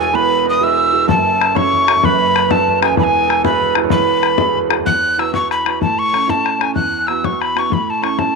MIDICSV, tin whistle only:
0, 0, Header, 1, 2, 480
1, 0, Start_track
1, 0, Key_signature, 4, "major"
1, 0, Tempo, 314961
1, 226, Time_signature, 6, 3, 24, 8
1, 12731, End_track
2, 0, Start_track
2, 0, Title_t, "Tin whistle"
2, 0, Program_c, 0, 75
2, 4, Note_on_c, 0, 80, 94
2, 231, Note_on_c, 0, 83, 120
2, 254, Note_off_c, 0, 80, 0
2, 716, Note_off_c, 0, 83, 0
2, 755, Note_on_c, 0, 87, 96
2, 969, Note_on_c, 0, 88, 97
2, 992, Note_off_c, 0, 87, 0
2, 1658, Note_off_c, 0, 88, 0
2, 1667, Note_on_c, 0, 81, 114
2, 2390, Note_on_c, 0, 85, 107
2, 2413, Note_off_c, 0, 81, 0
2, 3126, Note_on_c, 0, 83, 109
2, 3149, Note_off_c, 0, 85, 0
2, 3828, Note_on_c, 0, 81, 98
2, 3851, Note_off_c, 0, 83, 0
2, 4307, Note_off_c, 0, 81, 0
2, 4316, Note_on_c, 0, 80, 84
2, 4526, Note_off_c, 0, 80, 0
2, 4556, Note_on_c, 0, 83, 87
2, 4627, Note_on_c, 0, 80, 94
2, 4642, Note_off_c, 0, 83, 0
2, 5216, Note_off_c, 0, 80, 0
2, 5263, Note_on_c, 0, 83, 102
2, 5714, Note_off_c, 0, 83, 0
2, 5963, Note_on_c, 0, 83, 99
2, 6994, Note_off_c, 0, 83, 0
2, 7406, Note_on_c, 0, 90, 104
2, 7917, Note_on_c, 0, 88, 91
2, 7939, Note_off_c, 0, 90, 0
2, 8138, Note_off_c, 0, 88, 0
2, 8147, Note_on_c, 0, 85, 94
2, 8382, Note_off_c, 0, 85, 0
2, 8404, Note_on_c, 0, 83, 89
2, 8830, Note_off_c, 0, 83, 0
2, 8864, Note_on_c, 0, 81, 95
2, 9125, Note_on_c, 0, 85, 111
2, 9148, Note_off_c, 0, 81, 0
2, 9601, Note_on_c, 0, 81, 99
2, 9624, Note_off_c, 0, 85, 0
2, 10091, Note_on_c, 0, 80, 81
2, 10114, Note_off_c, 0, 81, 0
2, 10277, Note_off_c, 0, 80, 0
2, 10286, Note_on_c, 0, 90, 108
2, 10774, Note_on_c, 0, 88, 94
2, 10797, Note_off_c, 0, 90, 0
2, 11051, Note_on_c, 0, 85, 87
2, 11074, Note_off_c, 0, 88, 0
2, 11293, Note_on_c, 0, 83, 84
2, 11316, Note_off_c, 0, 85, 0
2, 11561, Note_on_c, 0, 85, 82
2, 11584, Note_off_c, 0, 83, 0
2, 11786, Note_on_c, 0, 83, 83
2, 11809, Note_off_c, 0, 85, 0
2, 12041, Note_on_c, 0, 81, 90
2, 12064, Note_off_c, 0, 83, 0
2, 12236, Note_on_c, 0, 85, 86
2, 12259, Note_off_c, 0, 81, 0
2, 12480, Note_on_c, 0, 81, 76
2, 12503, Note_off_c, 0, 85, 0
2, 12731, Note_off_c, 0, 81, 0
2, 12731, End_track
0, 0, End_of_file